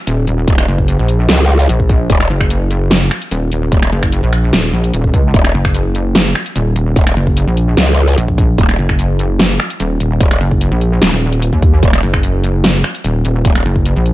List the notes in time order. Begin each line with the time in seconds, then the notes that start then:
0.07 D#1, closed hi-hat
0.27 D#1, closed hi-hat
0.48 D#1, kick, closed hi-hat
0.58 finger snap, closed hi-hat
0.68 F#1
0.78 kick
0.88 closed hi-hat
0.99 A#1
1.08 closed hi-hat
1.29 C#2, snare, closed hi-hat
1.60 closed hi-hat
1.69 A#1, closed hi-hat
1.80 kick
1.89 kick, closed hi-hat
2.10 D#1, kick, closed hi-hat
2.20 finger snap, closed hi-hat
2.30 F#1
2.41 finger snap, kick
2.50 closed hi-hat
2.71 closed hi-hat
2.91 snare, closed hi-hat
3.11 finger snap
3.22 closed hi-hat
3.31 D#1, closed hi-hat
3.52 D#1, closed hi-hat
3.72 D#1, kick, closed hi-hat
3.83 finger snap, closed hi-hat
3.92 F#1
4.03 finger snap, kick
4.12 closed hi-hat
4.23 A#1
4.33 finger snap, closed hi-hat
4.53 D#1, snare, closed hi-hat
4.73 A#1
4.84 closed hi-hat
4.94 D#1, closed hi-hat
5.04 kick
5.14 C#2, kick, closed hi-hat
5.34 D#1, kick, closed hi-hat
5.45 finger snap, closed hi-hat
5.54 F#1
5.65 finger snap, kick
5.75 closed hi-hat
5.95 closed hi-hat
6.15 snare, closed hi-hat
6.35 finger snap
6.46 closed hi-hat
6.56 D#1, closed hi-hat
6.76 D#1, closed hi-hat
6.96 D#1, kick, closed hi-hat
7.07 finger snap, closed hi-hat
7.16 F#1
7.27 kick
7.37 closed hi-hat
7.47 A#1
7.57 closed hi-hat
7.77 C#2, snare, closed hi-hat
8.08 closed hi-hat
8.18 A#1, closed hi-hat
8.28 kick
8.38 kick, closed hi-hat
8.58 D#1, kick, closed hi-hat
8.69 finger snap, closed hi-hat
8.79 F#1
8.89 finger snap, kick
8.99 closed hi-hat
9.19 closed hi-hat
9.39 snare, closed hi-hat
9.60 finger snap
9.70 closed hi-hat
9.80 D#1, closed hi-hat
10.00 D#1, closed hi-hat
10.21 D#1, kick, closed hi-hat
10.31 finger snap, closed hi-hat
10.41 F#1
10.51 kick
10.61 closed hi-hat
10.72 A#1
10.81 closed hi-hat
11.02 D#1, snare, closed hi-hat
11.12 D#1
11.32 closed hi-hat
11.42 closed hi-hat
11.53 D#2, kick
11.62 kick, closed hi-hat
11.83 D#1, kick, closed hi-hat
11.93 finger snap, closed hi-hat
12.03 F#1
12.14 finger snap, kick
12.23 closed hi-hat
12.44 closed hi-hat
12.64 snare, closed hi-hat
12.84 finger snap
12.95 closed hi-hat
13.04 D#1, closed hi-hat
13.25 D#1, closed hi-hat
13.45 D#1, kick, closed hi-hat
13.55 finger snap, closed hi-hat
13.65 F#1
13.76 kick
13.86 closed hi-hat
13.96 A#1
14.06 closed hi-hat